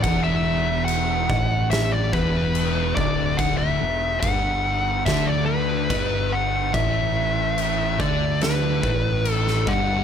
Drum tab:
CC |x---x---x---x---|x---x---x---x---|x---x---x---x---|
SD |--------o-------|--------o-------|--------o----o--|
BD |o-----o---o---o-|o---o---o---o---|o-----o---o---o-|